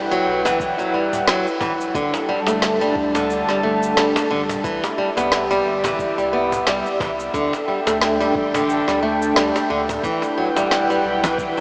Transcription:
0.00 0.22 E1 loud
0.00 1.92 E4 medium
0.00 1.92 B4 medium
0.00 1.92 F#5 medium
0.00 1.92 G5 medium
0.11 0.43 F#3 loud
0.11 shaker soft
0.26 0.73 B1 medium
0.45 0.77 E3 medium
0.45 cajon bass medium
0.45 cajon slap medium
0.45 shaker medium
0.60 kick loud
0.60 shaker soft
0.78 1.23 E1 medium
0.78 0.93 F#3 medium
0.78 cajon slap soft
0.78 shaker soft
0.94 1.26 G3 medium
1.13 cajon bass medium
1.13 shaker medium
1.27 1.43 E1 medium
1.27 1.45 F#3 medium
1.27 snare loud
1.27 shaker medium
1.47 shaker soft
1.61 1.89 E1 loud
1.61 1.72 E3 medium
1.61 cajon bass medium
1.61 kick loud
1.61 cajon slap medium
1.81 shaker medium
1.94 2.10 G1 medium
1.94 2.13 D3 loud
1.94 4.62 G3 medium
1.94 4.62 D4 medium
1.94 4.62 A4 medium
1.94 4.62 A5 medium
1.94 kick loud
1.94 shaker medium
2.14 cajon slap medium
2.14 shaker soft
2.29 2.39 G3 medium
2.47 2.92 G1 medium
2.47 2.79 A3 medium
2.47 cajon slap medium
2.47 shaker medium
2.62 snare medium
2.62 shaker medium
2.81 3.13 G3 medium
2.81 shaker soft
2.96 3.43 D2 medium
2.96 kick loud
3.15 3.47 D3 medium
3.15 cajon bass medium
3.15 cajon slap medium
3.15 shaker medium
3.30 shaker medium
3.48 3.93 G1 medium
3.48 3.63 G3 medium
3.48 snare soft
3.48 shaker soft
3.63 3.95 A3 medium
3.83 shaker medium
3.97 4.13 G1 medium
3.97 4.15 G3 medium
3.97 snare loud
3.97 shaker medium
4.16 cajon slap medium
4.16 shaker soft
4.30 4.59 G1 loud
4.30 4.41 D3 medium
4.49 cajon bass medium
4.49 shaker medium
4.64 4.80 C2 medium
4.64 4.82 E3 medium
4.64 7.31 G4 medium
4.64 7.31 D5 medium
4.64 10.00 E5 medium
4.64 kick loud
4.64 shaker medium
4.84 cajon slap medium
4.84 shaker soft
4.98 5.09 G3 medium
5.17 5.61 C2 medium
5.17 5.49 B3 medium
5.17 cajon slap medium
5.17 shaker medium
5.32 snare medium
5.32 shaker medium
5.51 5.82 G3 medium
5.51 shaker soft
5.66 6.13 G1 medium
5.84 6.16 E3 medium
5.84 cajon bass medium
5.84 cajon slap medium
5.84 shaker medium
5.99 kick loud
5.99 shaker medium
6.18 6.62 C2 medium
6.18 6.32 G3 medium
6.18 cajon slap soft
6.18 shaker soft
6.33 6.65 B3 medium
6.52 cajon bass medium
6.52 shaker medium
6.67 6.82 C2 medium
6.67 6.85 G3 medium
6.67 snare medium
6.67 shaker medium
6.86 shaker soft
7.00 7.29 C2 loud
7.00 7.11 E3 medium
7.00 kick loud
7.00 cajon bass medium
7.00 cajon slap medium
7.20 shaker medium
7.34 7.50 D2 loud
7.34 7.52 D3 medium
7.34 10.01 D4 medium
7.34 10.01 A4 medium
7.34 10.01 G5 medium
7.34 kick loud
7.34 shaker medium
7.53 cajon slap medium
7.53 shaker soft
7.68 7.79 G3 medium
7.87 8.31 D2 loud
7.87 8.18 A3 medium
7.87 cajon slap medium
7.87 shaker medium
8.01 snare medium
8.01 shaker medium
8.20 8.52 G3 medium
8.20 shaker soft
8.35 8.82 A1 medium
8.35 kick loud
8.54 8.86 D3 medium
8.54 cajon bass medium
8.54 cajon slap medium
8.54 shaker medium
8.69 shaker medium
8.88 9.32 D2 medium
8.88 9.02 G3 medium
8.88 snare soft
8.88 shaker soft
9.03 9.35 A3 medium
9.22 shaker medium
9.36 9.52 D2 medium
9.36 9.54 G3 medium
9.36 snare medium
9.36 shaker medium
9.56 cajon slap medium
9.56 shaker soft
9.70 9.98 D2 loud
9.70 9.81 D3 medium
9.89 cajon bass medium
9.89 shaker medium
10.03 10.19 E1 medium
10.03 10.22 E3 medium
10.03 11.60 E4 medium
10.03 11.60 B4 medium
10.03 11.60 F#5 medium
10.03 11.60 G5 medium
10.03 kick loud
10.03 shaker medium
10.22 cajon slap medium
10.22 shaker soft
10.38 10.48 F#3 medium
10.56 11.01 E1 loud
10.56 10.88 G3 medium
10.56 cajon slap medium
10.56 shaker medium
10.71 snare medium
10.71 shaker medium
10.90 11.22 G3 medium
10.90 shaker soft
11.05 11.52 B1 medium
11.24 11.56 E3 medium
11.24 cajon bass medium
11.24 cajon slap medium
11.24 low conga medium
11.24 shaker medium
11.38 kick loud
11.38 shaker medium

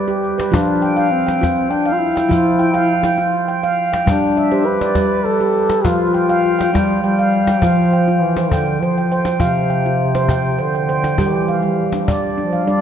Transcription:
0.00 0.21 G4 medium
0.00 0.37 B4 medium
0.08 0.37 G4 medium
0.23 cajon slap soft
0.38 0.67 B4 medium
0.38 cajon slap medium
0.51 0.78 F3 medium
0.51 1.13 D4 medium
0.51 0.82 F4 medium
0.51 cajon bass medium
0.82 0.96 G5 medium
0.97 1.26 F5 medium
0.97 1.26 G5 medium
0.97 cajon slap soft
1.12 1.72 C4 medium
1.27 1.69 G5 medium
1.27 cajon slap soft
1.41 1.71 F4 medium
1.41 cajon bass medium
1.41 cajon slap soft
1.70 1.94 D4 loud
1.70 2.14 G5 medium
1.86 2.15 F5 medium
1.93 2.01 F4 medium
1.99 3.18 E4 loud
2.16 2.58 G5 medium
2.16 cajon slap soft
2.29 2.55 F3 medium
2.29 2.59 F4 medium
2.29 cajon bass soft
2.59 2.73 G5 medium
2.74 3.04 F5 medium
2.74 3.03 G5 medium
2.74 cajon slap soft
3.03 3.47 G5 medium
3.03 cajon slap soft
3.18 3.48 F4 medium
3.18 cajon slap soft
3.48 3.91 G5 medium
3.63 3.93 F5 medium
3.63 cajon slap soft
3.93 4.22 G5 medium
3.93 cajon slap soft
4.06 4.36 G3 medium
4.06 4.68 D4 loud
4.06 cajon bass medium
4.37 4.81 E5 medium
4.52 4.81 G4 medium
4.52 4.96 C5 medium
4.52 cajon slap soft
4.66 5.27 B4 loud
4.81 5.26 D5 medium
4.81 cajon slap soft
4.95 5.25 G3 medium
4.95 cajon bass medium
4.95 cajon slap soft
5.25 5.87 A4 loud
5.25 5.70 B4 medium
5.40 5.70 G4 medium
5.40 cajon slap soft
5.70 6.00 B4 medium
5.70 cajon slap soft
5.84 6.11 F3 medium
5.84 6.14 F4 medium
5.84 6.72 F4 loud
5.84 cajon bass medium
5.99 cajon slap soft
6.14 6.28 G5 medium
6.14 cajon slap soft
6.29 6.59 F5 medium
6.29 6.58 G5 medium
6.29 cajon slap soft
6.45 cajon slap soft
6.59 7.03 G5 medium
6.59 cajon slap soft
6.73 7.01 G3 loud
6.73 7.03 F4 medium
6.73 cajon bass medium
6.73 cajon slap soft
6.89 cajon slap soft
7.03 7.63 G3 loud
7.03 7.47 G5 medium
7.19 7.48 F5 medium
7.33 cajon slap soft
7.47 7.78 G5 medium
7.47 cajon slap soft
7.62 8.22 F3 medium
7.62 8.67 F3 medium
7.62 7.92 F4 medium
7.62 8.07 F5 medium
7.62 cajon bass soft
7.93 8.37 G5 medium
8.08 8.37 F4 medium
8.21 8.53 E3 medium
8.37 8.67 C5 medium
8.37 cajon slap soft
8.51 8.82 D3 medium
8.51 8.97 G5 medium
8.51 cajon bass medium
8.81 9.40 F3 medium
8.81 9.11 C5 medium
8.98 9.11 G5 medium
9.11 9.41 C5 medium
9.11 9.26 G5 medium
9.11 cajon slap soft
9.25 9.69 G5 medium
9.25 cajon slap soft
9.40 10.62 C3 medium
9.40 10.45 F3 medium
9.40 9.70 F4 medium
9.40 9.85 F5 medium
9.40 cajon bass medium
9.70 10.15 G5 medium
9.86 10.15 F4 medium
10.15 10.45 C5 medium
10.15 cajon slap soft
10.29 10.73 G5 medium
10.29 cajon bass soft
10.59 11.21 D3 medium
10.59 10.88 C5 medium
10.75 10.88 G5 medium
10.88 11.19 C5 medium
10.88 11.03 G5 medium
10.88 cajon slap soft
11.04 11.34 G5 medium
11.04 cajon slap soft
11.18 12.08 E3 medium
11.18 11.48 G3 medium
11.18 11.63 G4 medium
11.18 cajon bass soft
11.48 11.93 F5 medium
11.63 11.93 G3 medium
11.92 12.23 D4 medium
11.92 cajon slap soft
12.08 12.53 D5 medium
12.08 cajon bass medium
12.38 12.68 F3 medium
12.38 12.66 D4 medium
12.53 12.81 F5 medium
12.67 12.81 G3 medium
12.67 12.81 D4 medium
12.67 12.81 D5 medium
12.67 cajon slap soft

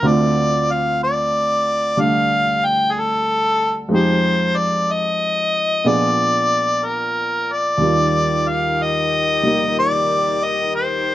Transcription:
0.03 3.91 D2 soft
0.03 1.95 D3 soft
0.03 1.97 A3 soft
0.03 3.91 C4 soft
0.03 3.92 F4 medium
0.07 0.73 D5 medium
0.72 1.01 F5 medium
1.04 2.02 D5 medium
1.97 3.91 D3 soft
1.97 3.91 G3 soft
1.97 3.91 A3 soft
1.97 3.92 D4 soft
2.01 2.67 F5 medium
2.65 2.93 G5 medium
2.92 3.01 G#4 medium
2.99 3.79 A4 medium
3.89 5.85 F2 medium
3.89 5.83 F3 soft
3.89 5.85 G#3 soft
3.89 5.86 D#4 soft
3.94 5.87 G4 soft
3.94 4.59 C5 medium
4.57 4.93 D5 medium
4.92 5.89 D#5 medium
5.84 7.81 A#2 soft
5.84 7.81 F3 soft
5.84 7.82 B3 soft
5.84 7.82 D4 soft
5.84 7.82 G#4 medium
5.84 6.87 D5 medium
6.86 7.54 A#4 medium
7.53 8.50 D5 medium
7.78 11.15 D#2 soft
7.78 11.15 D#3 soft
7.78 11.15 D#3 medium
7.78 9.42 G3 soft
7.78 11.15 G4 medium
7.83 11.15 F4 soft
8.48 8.84 F5 medium
8.83 9.78 D#5 medium
9.43 11.15 G3 soft
9.43 11.15 A#3 soft
9.43 11.15 D#4 soft
9.43 11.15 G4 soft
9.79 10.46 D5 medium
10.44 10.75 D#5 medium
10.76 11.15 C5 medium

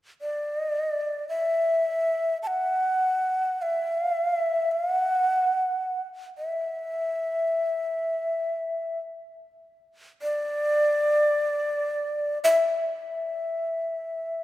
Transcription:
0.21 1.27 D5 medium
1.29 2.38 E5 medium
2.43 2.49 A5 medium
2.48 3.63 F#5 medium
3.62 4.73 E5 medium
4.72 4.91 F5 medium
4.91 6.03 F#5 medium
6.38 8.99 E5 medium
10.22 12.39 D5 medium
12.44 14.44 E5 medium

